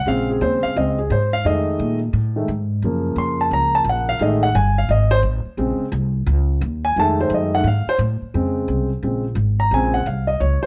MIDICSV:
0, 0, Header, 1, 4, 480
1, 0, Start_track
1, 0, Tempo, 344630
1, 96, Time_signature, 4, 2, 24, 8
1, 14850, End_track
2, 0, Start_track
2, 0, Title_t, "Grand piano"
2, 0, Program_c, 0, 0
2, 92, Note_on_c, 0, 49, 49
2, 96, Note_on_c, 0, 56, 49
2, 108, Note_on_c, 0, 60, 56
2, 111, Note_on_c, 0, 77, 79
2, 402, Note_off_c, 0, 77, 0
2, 422, Note_on_c, 0, 68, 53
2, 581, Note_off_c, 0, 68, 0
2, 585, Note_on_c, 0, 72, 67
2, 877, Note_on_c, 0, 77, 85
2, 879, Note_off_c, 0, 72, 0
2, 1042, Note_off_c, 0, 49, 0
2, 1043, Note_off_c, 0, 56, 0
2, 1048, Note_off_c, 0, 77, 0
2, 1058, Note_off_c, 0, 60, 0
2, 1063, Note_on_c, 0, 49, 40
2, 1064, Note_on_c, 0, 56, 37
2, 1078, Note_on_c, 0, 75, 63
2, 1079, Note_on_c, 0, 60, 46
2, 1337, Note_off_c, 0, 49, 0
2, 1338, Note_off_c, 0, 56, 0
2, 1346, Note_off_c, 0, 60, 0
2, 1366, Note_off_c, 0, 75, 0
2, 1375, Note_on_c, 0, 68, 54
2, 1537, Note_off_c, 0, 68, 0
2, 1558, Note_on_c, 0, 72, 69
2, 1846, Note_off_c, 0, 72, 0
2, 1856, Note_on_c, 0, 77, 93
2, 2015, Note_on_c, 0, 51, 50
2, 2017, Note_off_c, 0, 77, 0
2, 2022, Note_on_c, 0, 56, 45
2, 2033, Note_on_c, 0, 75, 76
2, 2038, Note_on_c, 0, 57, 56
2, 2758, Note_off_c, 0, 75, 0
2, 2764, Note_off_c, 0, 51, 0
2, 2768, Note_off_c, 0, 56, 0
2, 2776, Note_off_c, 0, 57, 0
2, 3286, Note_on_c, 0, 51, 49
2, 3287, Note_on_c, 0, 56, 41
2, 3297, Note_on_c, 0, 57, 52
2, 3440, Note_off_c, 0, 51, 0
2, 3441, Note_off_c, 0, 56, 0
2, 3446, Note_off_c, 0, 57, 0
2, 3958, Note_on_c, 0, 49, 51
2, 3969, Note_on_c, 0, 53, 41
2, 3971, Note_on_c, 0, 58, 54
2, 4434, Note_on_c, 0, 84, 72
2, 4724, Note_off_c, 0, 84, 0
2, 4747, Note_on_c, 0, 81, 75
2, 4903, Note_off_c, 0, 81, 0
2, 4922, Note_on_c, 0, 82, 86
2, 5208, Note_off_c, 0, 82, 0
2, 5223, Note_on_c, 0, 81, 86
2, 5380, Note_off_c, 0, 81, 0
2, 5424, Note_on_c, 0, 78, 74
2, 5695, Note_on_c, 0, 77, 89
2, 5699, Note_off_c, 0, 78, 0
2, 5811, Note_off_c, 0, 49, 0
2, 5816, Note_off_c, 0, 53, 0
2, 5817, Note_off_c, 0, 58, 0
2, 5856, Note_off_c, 0, 77, 0
2, 5856, Note_on_c, 0, 51, 51
2, 5858, Note_on_c, 0, 56, 47
2, 5867, Note_on_c, 0, 57, 60
2, 5880, Note_on_c, 0, 75, 66
2, 6167, Note_off_c, 0, 75, 0
2, 6168, Note_on_c, 0, 78, 85
2, 6213, Note_off_c, 0, 51, 0
2, 6215, Note_off_c, 0, 56, 0
2, 6219, Note_off_c, 0, 57, 0
2, 6333, Note_off_c, 0, 78, 0
2, 6342, Note_on_c, 0, 80, 84
2, 6637, Note_off_c, 0, 80, 0
2, 6661, Note_on_c, 0, 77, 75
2, 6819, Note_off_c, 0, 77, 0
2, 6834, Note_on_c, 0, 75, 74
2, 7116, Note_on_c, 0, 72, 94
2, 7123, Note_off_c, 0, 75, 0
2, 7222, Note_off_c, 0, 72, 0
2, 7768, Note_on_c, 0, 49, 52
2, 7779, Note_on_c, 0, 56, 50
2, 7783, Note_on_c, 0, 60, 58
2, 8129, Note_off_c, 0, 49, 0
2, 8135, Note_off_c, 0, 56, 0
2, 8137, Note_off_c, 0, 60, 0
2, 9536, Note_on_c, 0, 80, 90
2, 9696, Note_off_c, 0, 80, 0
2, 9719, Note_on_c, 0, 51, 52
2, 9737, Note_on_c, 0, 56, 47
2, 9741, Note_on_c, 0, 57, 59
2, 9743, Note_on_c, 0, 81, 87
2, 10018, Note_off_c, 0, 81, 0
2, 10037, Note_on_c, 0, 72, 63
2, 10187, Note_off_c, 0, 72, 0
2, 10227, Note_on_c, 0, 75, 62
2, 10484, Note_off_c, 0, 51, 0
2, 10486, Note_off_c, 0, 56, 0
2, 10493, Note_off_c, 0, 57, 0
2, 10500, Note_off_c, 0, 75, 0
2, 10505, Note_on_c, 0, 51, 41
2, 10507, Note_on_c, 0, 56, 38
2, 10510, Note_on_c, 0, 78, 82
2, 10514, Note_on_c, 0, 57, 49
2, 10649, Note_off_c, 0, 51, 0
2, 10650, Note_off_c, 0, 56, 0
2, 10654, Note_off_c, 0, 57, 0
2, 10663, Note_off_c, 0, 78, 0
2, 10689, Note_on_c, 0, 77, 75
2, 10971, Note_off_c, 0, 77, 0
2, 10988, Note_on_c, 0, 72, 90
2, 11083, Note_off_c, 0, 72, 0
2, 11619, Note_on_c, 0, 49, 49
2, 11629, Note_on_c, 0, 60, 54
2, 11635, Note_on_c, 0, 56, 48
2, 12365, Note_off_c, 0, 49, 0
2, 12371, Note_off_c, 0, 60, 0
2, 12374, Note_off_c, 0, 56, 0
2, 12580, Note_on_c, 0, 49, 37
2, 12590, Note_on_c, 0, 56, 38
2, 12592, Note_on_c, 0, 60, 44
2, 12855, Note_off_c, 0, 49, 0
2, 12860, Note_off_c, 0, 56, 0
2, 12861, Note_off_c, 0, 60, 0
2, 13367, Note_on_c, 0, 82, 82
2, 13532, Note_off_c, 0, 82, 0
2, 13545, Note_on_c, 0, 49, 49
2, 13553, Note_on_c, 0, 56, 45
2, 13566, Note_on_c, 0, 60, 54
2, 13566, Note_on_c, 0, 80, 82
2, 13845, Note_on_c, 0, 78, 76
2, 13850, Note_off_c, 0, 80, 0
2, 13898, Note_off_c, 0, 49, 0
2, 13903, Note_off_c, 0, 56, 0
2, 13909, Note_off_c, 0, 60, 0
2, 14011, Note_off_c, 0, 78, 0
2, 14026, Note_on_c, 0, 77, 58
2, 14308, Note_on_c, 0, 75, 67
2, 14319, Note_off_c, 0, 77, 0
2, 14483, Note_off_c, 0, 75, 0
2, 14490, Note_on_c, 0, 73, 66
2, 14792, Note_off_c, 0, 73, 0
2, 14801, Note_on_c, 0, 72, 75
2, 14850, Note_off_c, 0, 72, 0
2, 14850, End_track
3, 0, Start_track
3, 0, Title_t, "Upright bass"
3, 0, Program_c, 1, 32
3, 80, Note_on_c, 1, 34, 78
3, 553, Note_off_c, 1, 34, 0
3, 571, Note_on_c, 1, 39, 94
3, 860, Note_off_c, 1, 39, 0
3, 1065, Note_on_c, 1, 37, 95
3, 1527, Note_off_c, 1, 37, 0
3, 1534, Note_on_c, 1, 44, 91
3, 2001, Note_off_c, 1, 44, 0
3, 2016, Note_on_c, 1, 41, 80
3, 2482, Note_off_c, 1, 41, 0
3, 2498, Note_on_c, 1, 46, 86
3, 2960, Note_off_c, 1, 46, 0
3, 2968, Note_on_c, 1, 45, 91
3, 3438, Note_off_c, 1, 45, 0
3, 3456, Note_on_c, 1, 44, 89
3, 3922, Note_off_c, 1, 44, 0
3, 3933, Note_on_c, 1, 42, 79
3, 4389, Note_off_c, 1, 42, 0
3, 4397, Note_on_c, 1, 41, 89
3, 4872, Note_off_c, 1, 41, 0
3, 4889, Note_on_c, 1, 37, 84
3, 5344, Note_off_c, 1, 37, 0
3, 5353, Note_on_c, 1, 34, 90
3, 5829, Note_off_c, 1, 34, 0
3, 5840, Note_on_c, 1, 33, 82
3, 6313, Note_off_c, 1, 33, 0
3, 6335, Note_on_c, 1, 31, 102
3, 6800, Note_off_c, 1, 31, 0
3, 6807, Note_on_c, 1, 32, 87
3, 7270, Note_off_c, 1, 32, 0
3, 7278, Note_on_c, 1, 33, 100
3, 7572, Note_off_c, 1, 33, 0
3, 7762, Note_on_c, 1, 34, 81
3, 8054, Note_off_c, 1, 34, 0
3, 8243, Note_on_c, 1, 36, 105
3, 8714, Note_off_c, 1, 36, 0
3, 8726, Note_on_c, 1, 37, 101
3, 9195, Note_off_c, 1, 37, 0
3, 9211, Note_on_c, 1, 39, 101
3, 9678, Note_off_c, 1, 39, 0
3, 9699, Note_on_c, 1, 41, 81
3, 10154, Note_off_c, 1, 41, 0
3, 10163, Note_on_c, 1, 42, 93
3, 10631, Note_off_c, 1, 42, 0
3, 10639, Note_on_c, 1, 44, 93
3, 10932, Note_off_c, 1, 44, 0
3, 11122, Note_on_c, 1, 45, 99
3, 11414, Note_off_c, 1, 45, 0
3, 11618, Note_on_c, 1, 41, 80
3, 12082, Note_off_c, 1, 41, 0
3, 12090, Note_on_c, 1, 36, 88
3, 12558, Note_off_c, 1, 36, 0
3, 12572, Note_on_c, 1, 34, 84
3, 13017, Note_off_c, 1, 34, 0
3, 13026, Note_on_c, 1, 32, 93
3, 13506, Note_off_c, 1, 32, 0
3, 13525, Note_on_c, 1, 34, 89
3, 13996, Note_off_c, 1, 34, 0
3, 14011, Note_on_c, 1, 36, 92
3, 14479, Note_off_c, 1, 36, 0
3, 14493, Note_on_c, 1, 37, 83
3, 14781, Note_off_c, 1, 37, 0
3, 14850, End_track
4, 0, Start_track
4, 0, Title_t, "Muted upright bass strokes"
4, 892, Note_on_c, 9, 29, 39
4, 1031, Note_off_c, 9, 29, 0
4, 7590, Note_on_c, 9, 29, 40
4, 7730, Note_off_c, 9, 29, 0
4, 8066, Note_on_c, 9, 29, 41
4, 8206, Note_off_c, 9, 29, 0
4, 10960, Note_on_c, 9, 29, 44
4, 11099, Note_off_c, 9, 29, 0
4, 11445, Note_on_c, 9, 29, 40
4, 11585, Note_off_c, 9, 29, 0
4, 14804, Note_on_c, 9, 29, 39
4, 14850, Note_off_c, 9, 29, 0
4, 14850, End_track
0, 0, End_of_file